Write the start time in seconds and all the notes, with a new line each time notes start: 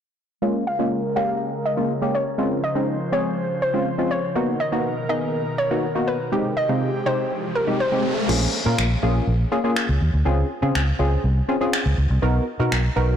0.42 C#3 G#3 A#3 C#4 F4 A#4
0.67 F5
0.79 G#3 A#3 C#4 F4
1.16 G#3 A#3 C#4 G4 F5
1.65 D#5
1.77 G#3 A#3 C#4 F4
2.02 G#3 A#3 C#4 G4
2.15 C#5
2.38 F3 G#3 C4 C#4 F4 C5
2.64 D#5
2.75 G#3 C4 C#4 D#4
3.12 G#3 C4 C#4 G#4 C#5
3.62 C5
3.74 G#3 C4 C#4 F4
3.98 G#3 C4 C#4 F4
4.11 C#5
4.35 B2 D#3 A#3 B3 D#4 F#4 A#4
4.60 D#5
4.72 A#3 B3 D#4 F#4
5.09 A#3 B3 D#4 G#4 D#5
5.58 C#5
5.71 A#3 B3 D#4 F#4
5.95 A#3 B3 D#4 F#4
6.08 B4
6.32 C3 G#3 C4 D#4 G4, riser
6.57 D#5
6.69 C3 G#3 C4 D#4 F4
7.06 C3 G#3 C4 D#4 G4 C5
7.55 A#4
7.67 C3 G#3 C4 D#4 G4
7.80 C5
7.92 C3 G#3 C4 D#4 G4
8.29 A#1 A#3 C#4 F4 G#4, crash
8.66 A#2 A#3 C#4 F4 A#4
8.78 A#1, finger snap
9.03 A#1 A#3 C#4 F4 G#4
9.27 A#1
9.52 A#3 C#4 F4 G#4
9.64 A#3 C#4 F4 G#4
9.76 finger snap
9.89 C#2
10.01 D#2
10.14 D2
10.25 C#2 C4 C#4 F4 G#4
10.62 C#3 C4 C#4 F4 G#4
10.75 C#2, finger snap
10.99 C#2 C4 C#4 F4 G#4
11.24 C2
11.48 C4 C#4 F4 G#4
11.61 C4 C#4 F4 G#4
11.73 finger snap
11.86 C#2
11.98 C#2
12.10 C2
12.22 B1 B3 D#4 F#4 A#4
12.60 B2 B3 D#4 F#4 A#4
12.72 B1, finger snap
12.96 B1 B3 D#4 F#4 A#4